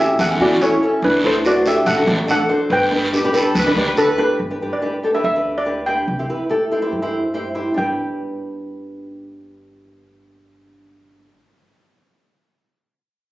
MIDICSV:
0, 0, Header, 1, 6, 480
1, 0, Start_track
1, 0, Key_signature, 1, "major"
1, 0, Tempo, 421053
1, 1173, Time_signature, 4, 2, 24, 8
1, 6936, Tempo, 424628
1, 15107, End_track
2, 0, Start_track
2, 0, Title_t, "Steel pan"
2, 0, Program_c, 0, 114
2, 0, Note_on_c, 0, 67, 83
2, 0, Note_on_c, 0, 76, 95
2, 203, Note_off_c, 0, 67, 0
2, 221, Note_on_c, 0, 69, 70
2, 231, Note_off_c, 0, 76, 0
2, 236, Note_on_c, 0, 78, 95
2, 441, Note_off_c, 0, 69, 0
2, 464, Note_on_c, 0, 66, 76
2, 472, Note_off_c, 0, 78, 0
2, 478, Note_on_c, 0, 74, 89
2, 682, Note_off_c, 0, 66, 0
2, 700, Note_on_c, 0, 64, 78
2, 712, Note_off_c, 0, 74, 0
2, 712, Note_on_c, 0, 73, 102
2, 1142, Note_off_c, 0, 64, 0
2, 1185, Note_on_c, 0, 62, 80
2, 1191, Note_on_c, 0, 71, 99
2, 1195, Note_off_c, 0, 73, 0
2, 1290, Note_off_c, 0, 62, 0
2, 1295, Note_off_c, 0, 71, 0
2, 1430, Note_on_c, 0, 64, 69
2, 1441, Note_on_c, 0, 72, 100
2, 1644, Note_off_c, 0, 64, 0
2, 1659, Note_on_c, 0, 66, 78
2, 1672, Note_off_c, 0, 72, 0
2, 1678, Note_on_c, 0, 74, 101
2, 1878, Note_off_c, 0, 66, 0
2, 1904, Note_on_c, 0, 67, 71
2, 1909, Note_on_c, 0, 76, 93
2, 1911, Note_off_c, 0, 74, 0
2, 2009, Note_off_c, 0, 67, 0
2, 2013, Note_off_c, 0, 76, 0
2, 2122, Note_on_c, 0, 69, 72
2, 2127, Note_on_c, 0, 78, 98
2, 2571, Note_off_c, 0, 69, 0
2, 2617, Note_off_c, 0, 78, 0
2, 2625, Note_on_c, 0, 69, 82
2, 2631, Note_on_c, 0, 78, 103
2, 3063, Note_off_c, 0, 69, 0
2, 3097, Note_on_c, 0, 71, 72
2, 3109, Note_on_c, 0, 79, 101
2, 3113, Note_off_c, 0, 78, 0
2, 4486, Note_off_c, 0, 71, 0
2, 4492, Note_off_c, 0, 79, 0
2, 4539, Note_on_c, 0, 69, 84
2, 4778, Note_on_c, 0, 71, 86
2, 4780, Note_off_c, 0, 69, 0
2, 5340, Note_off_c, 0, 71, 0
2, 5392, Note_on_c, 0, 74, 68
2, 5866, Note_on_c, 0, 76, 72
2, 5880, Note_off_c, 0, 74, 0
2, 5967, Note_off_c, 0, 76, 0
2, 5980, Note_on_c, 0, 76, 90
2, 6357, Note_off_c, 0, 76, 0
2, 6358, Note_on_c, 0, 74, 89
2, 6684, Note_on_c, 0, 79, 74
2, 6713, Note_off_c, 0, 74, 0
2, 8564, Note_off_c, 0, 79, 0
2, 8850, Note_on_c, 0, 79, 74
2, 12844, Note_off_c, 0, 79, 0
2, 15107, End_track
3, 0, Start_track
3, 0, Title_t, "Horn section"
3, 0, Program_c, 1, 61
3, 3584, Note_on_c, 1, 67, 93
3, 3799, Note_off_c, 1, 67, 0
3, 3814, Note_on_c, 1, 69, 99
3, 4051, Note_off_c, 1, 69, 0
3, 4069, Note_on_c, 1, 71, 108
3, 4402, Note_off_c, 1, 71, 0
3, 4423, Note_on_c, 1, 71, 105
3, 4472, Note_off_c, 1, 71, 0
3, 4541, Note_on_c, 1, 71, 93
3, 4982, Note_off_c, 1, 71, 0
3, 15107, End_track
4, 0, Start_track
4, 0, Title_t, "Nylon-string guitar"
4, 0, Program_c, 2, 24
4, 0, Note_on_c, 2, 61, 79
4, 0, Note_on_c, 2, 64, 76
4, 0, Note_on_c, 2, 66, 78
4, 193, Note_off_c, 2, 61, 0
4, 196, Note_off_c, 2, 64, 0
4, 196, Note_off_c, 2, 66, 0
4, 339, Note_on_c, 2, 61, 76
4, 344, Note_on_c, 2, 67, 87
4, 347, Note_on_c, 2, 64, 69
4, 408, Note_off_c, 2, 61, 0
4, 410, Note_off_c, 2, 64, 0
4, 410, Note_off_c, 2, 67, 0
4, 452, Note_on_c, 2, 61, 76
4, 458, Note_on_c, 2, 64, 73
4, 459, Note_on_c, 2, 69, 81
4, 604, Note_off_c, 2, 61, 0
4, 606, Note_off_c, 2, 69, 0
4, 607, Note_off_c, 2, 64, 0
4, 701, Note_on_c, 2, 61, 79
4, 702, Note_on_c, 2, 64, 78
4, 712, Note_on_c, 2, 69, 91
4, 847, Note_off_c, 2, 64, 0
4, 849, Note_off_c, 2, 61, 0
4, 854, Note_off_c, 2, 69, 0
4, 943, Note_on_c, 2, 61, 92
4, 950, Note_on_c, 2, 69, 96
4, 951, Note_on_c, 2, 64, 79
4, 1177, Note_off_c, 2, 61, 0
4, 1180, Note_off_c, 2, 64, 0
4, 1181, Note_off_c, 2, 69, 0
4, 1405, Note_on_c, 2, 62, 75
4, 1412, Note_on_c, 2, 69, 94
4, 1414, Note_on_c, 2, 66, 76
4, 1560, Note_off_c, 2, 62, 0
4, 1561, Note_off_c, 2, 66, 0
4, 1563, Note_off_c, 2, 69, 0
4, 1653, Note_on_c, 2, 62, 89
4, 1661, Note_on_c, 2, 66, 73
4, 1666, Note_on_c, 2, 71, 89
4, 1729, Note_off_c, 2, 62, 0
4, 1734, Note_off_c, 2, 66, 0
4, 1735, Note_off_c, 2, 71, 0
4, 1775, Note_on_c, 2, 62, 73
4, 1781, Note_on_c, 2, 72, 86
4, 1782, Note_on_c, 2, 66, 66
4, 1844, Note_off_c, 2, 62, 0
4, 1846, Note_off_c, 2, 66, 0
4, 1847, Note_off_c, 2, 72, 0
4, 1887, Note_on_c, 2, 62, 83
4, 1893, Note_on_c, 2, 66, 74
4, 1895, Note_on_c, 2, 69, 89
4, 2107, Note_off_c, 2, 62, 0
4, 2109, Note_off_c, 2, 66, 0
4, 2109, Note_off_c, 2, 69, 0
4, 2248, Note_on_c, 2, 62, 79
4, 2248, Note_on_c, 2, 66, 71
4, 2251, Note_on_c, 2, 69, 87
4, 2319, Note_off_c, 2, 66, 0
4, 2320, Note_off_c, 2, 62, 0
4, 2320, Note_off_c, 2, 69, 0
4, 2355, Note_on_c, 2, 62, 79
4, 2360, Note_on_c, 2, 66, 63
4, 2363, Note_on_c, 2, 69, 85
4, 2514, Note_off_c, 2, 62, 0
4, 2515, Note_off_c, 2, 66, 0
4, 2515, Note_off_c, 2, 69, 0
4, 2592, Note_on_c, 2, 62, 85
4, 2595, Note_on_c, 2, 66, 66
4, 2599, Note_on_c, 2, 69, 90
4, 2751, Note_off_c, 2, 66, 0
4, 2752, Note_off_c, 2, 62, 0
4, 2754, Note_off_c, 2, 69, 0
4, 2838, Note_on_c, 2, 62, 84
4, 2840, Note_on_c, 2, 66, 75
4, 2843, Note_on_c, 2, 72, 94
4, 3083, Note_off_c, 2, 62, 0
4, 3083, Note_off_c, 2, 66, 0
4, 3085, Note_off_c, 2, 72, 0
4, 3321, Note_on_c, 2, 62, 80
4, 3321, Note_on_c, 2, 67, 68
4, 3326, Note_on_c, 2, 71, 91
4, 3474, Note_off_c, 2, 67, 0
4, 3476, Note_off_c, 2, 62, 0
4, 3478, Note_off_c, 2, 71, 0
4, 3565, Note_on_c, 2, 62, 79
4, 3573, Note_on_c, 2, 67, 76
4, 3577, Note_on_c, 2, 71, 84
4, 3645, Note_off_c, 2, 62, 0
4, 3646, Note_off_c, 2, 67, 0
4, 3646, Note_off_c, 2, 71, 0
4, 3696, Note_on_c, 2, 62, 88
4, 3704, Note_on_c, 2, 67, 88
4, 3704, Note_on_c, 2, 71, 106
4, 3763, Note_off_c, 2, 62, 0
4, 3765, Note_off_c, 2, 67, 0
4, 3767, Note_off_c, 2, 71, 0
4, 3797, Note_on_c, 2, 62, 93
4, 3805, Note_on_c, 2, 71, 105
4, 3808, Note_on_c, 2, 67, 80
4, 4021, Note_off_c, 2, 62, 0
4, 4023, Note_off_c, 2, 67, 0
4, 4024, Note_off_c, 2, 71, 0
4, 4173, Note_on_c, 2, 62, 95
4, 4180, Note_on_c, 2, 67, 80
4, 4185, Note_on_c, 2, 71, 100
4, 4241, Note_off_c, 2, 62, 0
4, 4245, Note_off_c, 2, 67, 0
4, 4246, Note_off_c, 2, 71, 0
4, 4296, Note_on_c, 2, 62, 91
4, 4298, Note_on_c, 2, 67, 83
4, 4306, Note_on_c, 2, 74, 85
4, 4443, Note_off_c, 2, 67, 0
4, 4444, Note_off_c, 2, 74, 0
4, 4445, Note_off_c, 2, 62, 0
4, 4525, Note_on_c, 2, 62, 84
4, 4531, Note_on_c, 2, 67, 83
4, 4533, Note_on_c, 2, 69, 96
4, 4678, Note_off_c, 2, 62, 0
4, 4679, Note_off_c, 2, 69, 0
4, 4680, Note_off_c, 2, 67, 0
4, 4762, Note_on_c, 2, 62, 96
4, 4763, Note_on_c, 2, 67, 95
4, 4767, Note_on_c, 2, 71, 107
4, 5004, Note_off_c, 2, 67, 0
4, 5005, Note_off_c, 2, 62, 0
4, 5008, Note_off_c, 2, 71, 0
4, 5135, Note_on_c, 2, 62, 61
4, 5140, Note_on_c, 2, 67, 55
4, 5142, Note_on_c, 2, 71, 76
4, 5203, Note_off_c, 2, 62, 0
4, 5206, Note_off_c, 2, 67, 0
4, 5206, Note_off_c, 2, 71, 0
4, 5267, Note_on_c, 2, 62, 64
4, 5270, Note_on_c, 2, 67, 65
4, 5272, Note_on_c, 2, 71, 65
4, 5409, Note_off_c, 2, 62, 0
4, 5410, Note_off_c, 2, 67, 0
4, 5411, Note_off_c, 2, 71, 0
4, 5491, Note_on_c, 2, 62, 69
4, 5497, Note_on_c, 2, 71, 77
4, 5503, Note_on_c, 2, 67, 60
4, 5642, Note_off_c, 2, 62, 0
4, 5644, Note_off_c, 2, 71, 0
4, 5648, Note_off_c, 2, 67, 0
4, 5738, Note_on_c, 2, 62, 64
4, 5744, Note_on_c, 2, 67, 55
4, 5749, Note_on_c, 2, 69, 67
4, 5813, Note_off_c, 2, 62, 0
4, 5813, Note_off_c, 2, 67, 0
4, 5813, Note_off_c, 2, 69, 0
4, 5866, Note_on_c, 2, 62, 70
4, 5870, Note_on_c, 2, 67, 59
4, 5872, Note_on_c, 2, 71, 70
4, 6000, Note_off_c, 2, 67, 0
4, 6001, Note_off_c, 2, 62, 0
4, 6003, Note_off_c, 2, 71, 0
4, 6106, Note_on_c, 2, 62, 65
4, 6109, Note_on_c, 2, 67, 57
4, 6114, Note_on_c, 2, 71, 71
4, 6319, Note_off_c, 2, 62, 0
4, 6319, Note_off_c, 2, 67, 0
4, 6320, Note_off_c, 2, 71, 0
4, 6444, Note_on_c, 2, 62, 58
4, 6451, Note_on_c, 2, 67, 57
4, 6456, Note_on_c, 2, 71, 71
4, 6602, Note_off_c, 2, 62, 0
4, 6604, Note_off_c, 2, 67, 0
4, 6604, Note_off_c, 2, 71, 0
4, 6695, Note_on_c, 2, 62, 67
4, 6702, Note_on_c, 2, 67, 64
4, 6707, Note_on_c, 2, 71, 76
4, 6914, Note_off_c, 2, 62, 0
4, 6918, Note_off_c, 2, 67, 0
4, 6918, Note_off_c, 2, 71, 0
4, 7057, Note_on_c, 2, 64, 60
4, 7059, Note_on_c, 2, 67, 57
4, 7065, Note_on_c, 2, 72, 68
4, 7126, Note_off_c, 2, 67, 0
4, 7127, Note_off_c, 2, 64, 0
4, 7131, Note_off_c, 2, 72, 0
4, 7175, Note_on_c, 2, 64, 62
4, 7177, Note_on_c, 2, 67, 57
4, 7179, Note_on_c, 2, 71, 67
4, 7326, Note_off_c, 2, 64, 0
4, 7326, Note_off_c, 2, 67, 0
4, 7328, Note_off_c, 2, 71, 0
4, 7400, Note_on_c, 2, 64, 81
4, 7412, Note_on_c, 2, 67, 66
4, 7412, Note_on_c, 2, 69, 82
4, 7558, Note_off_c, 2, 64, 0
4, 7564, Note_off_c, 2, 67, 0
4, 7564, Note_off_c, 2, 69, 0
4, 7649, Note_on_c, 2, 64, 72
4, 7654, Note_on_c, 2, 67, 67
4, 7658, Note_on_c, 2, 72, 77
4, 7729, Note_off_c, 2, 64, 0
4, 7731, Note_off_c, 2, 67, 0
4, 7731, Note_off_c, 2, 72, 0
4, 7766, Note_on_c, 2, 64, 82
4, 7770, Note_on_c, 2, 67, 70
4, 7771, Note_on_c, 2, 72, 86
4, 7912, Note_off_c, 2, 64, 0
4, 7913, Note_off_c, 2, 67, 0
4, 7914, Note_off_c, 2, 72, 0
4, 7997, Note_on_c, 2, 64, 78
4, 7999, Note_on_c, 2, 67, 61
4, 8002, Note_on_c, 2, 72, 81
4, 8224, Note_off_c, 2, 64, 0
4, 8225, Note_off_c, 2, 67, 0
4, 8225, Note_off_c, 2, 72, 0
4, 8354, Note_on_c, 2, 64, 71
4, 8360, Note_on_c, 2, 67, 61
4, 8365, Note_on_c, 2, 72, 76
4, 8516, Note_off_c, 2, 64, 0
4, 8517, Note_off_c, 2, 67, 0
4, 8520, Note_off_c, 2, 72, 0
4, 8590, Note_on_c, 2, 64, 71
4, 8592, Note_on_c, 2, 67, 69
4, 8596, Note_on_c, 2, 72, 82
4, 8805, Note_off_c, 2, 64, 0
4, 8810, Note_on_c, 2, 62, 64
4, 8820, Note_off_c, 2, 67, 0
4, 8823, Note_off_c, 2, 72, 0
4, 8834, Note_on_c, 2, 67, 57
4, 8857, Note_on_c, 2, 71, 68
4, 12804, Note_off_c, 2, 62, 0
4, 12829, Note_off_c, 2, 67, 0
4, 12852, Note_off_c, 2, 71, 0
4, 15107, End_track
5, 0, Start_track
5, 0, Title_t, "Upright bass"
5, 0, Program_c, 3, 32
5, 215, Note_on_c, 3, 40, 104
5, 427, Note_off_c, 3, 40, 0
5, 444, Note_on_c, 3, 40, 101
5, 660, Note_off_c, 3, 40, 0
5, 1166, Note_on_c, 3, 38, 105
5, 2016, Note_off_c, 3, 38, 0
5, 2124, Note_on_c, 3, 33, 111
5, 2338, Note_off_c, 3, 33, 0
5, 2362, Note_on_c, 3, 33, 113
5, 2577, Note_off_c, 3, 33, 0
5, 3077, Note_on_c, 3, 31, 100
5, 3931, Note_off_c, 3, 31, 0
5, 4047, Note_on_c, 3, 38, 101
5, 4259, Note_off_c, 3, 38, 0
5, 4273, Note_on_c, 3, 38, 97
5, 4492, Note_off_c, 3, 38, 0
5, 5010, Note_on_c, 3, 31, 86
5, 5222, Note_off_c, 3, 31, 0
5, 5971, Note_on_c, 3, 38, 82
5, 6825, Note_off_c, 3, 38, 0
5, 6927, Note_on_c, 3, 36, 80
5, 7143, Note_off_c, 3, 36, 0
5, 7885, Note_on_c, 3, 43, 77
5, 8738, Note_off_c, 3, 43, 0
5, 8846, Note_on_c, 3, 31, 69
5, 12841, Note_off_c, 3, 31, 0
5, 15107, End_track
6, 0, Start_track
6, 0, Title_t, "Drums"
6, 218, Note_on_c, 9, 73, 86
6, 218, Note_on_c, 9, 74, 80
6, 332, Note_off_c, 9, 73, 0
6, 332, Note_off_c, 9, 74, 0
6, 698, Note_on_c, 9, 73, 81
6, 812, Note_off_c, 9, 73, 0
6, 1168, Note_on_c, 9, 74, 84
6, 1282, Note_off_c, 9, 74, 0
6, 1651, Note_on_c, 9, 73, 77
6, 1765, Note_off_c, 9, 73, 0
6, 1888, Note_on_c, 9, 73, 75
6, 2002, Note_off_c, 9, 73, 0
6, 2123, Note_on_c, 9, 73, 79
6, 2123, Note_on_c, 9, 74, 76
6, 2237, Note_off_c, 9, 73, 0
6, 2237, Note_off_c, 9, 74, 0
6, 2604, Note_on_c, 9, 73, 75
6, 2718, Note_off_c, 9, 73, 0
6, 3082, Note_on_c, 9, 74, 67
6, 3196, Note_off_c, 9, 74, 0
6, 3575, Note_on_c, 9, 73, 78
6, 3689, Note_off_c, 9, 73, 0
6, 3808, Note_on_c, 9, 73, 77
6, 3922, Note_off_c, 9, 73, 0
6, 4052, Note_on_c, 9, 73, 82
6, 4052, Note_on_c, 9, 74, 87
6, 4166, Note_off_c, 9, 73, 0
6, 4166, Note_off_c, 9, 74, 0
6, 4525, Note_on_c, 9, 73, 68
6, 4639, Note_off_c, 9, 73, 0
6, 15107, End_track
0, 0, End_of_file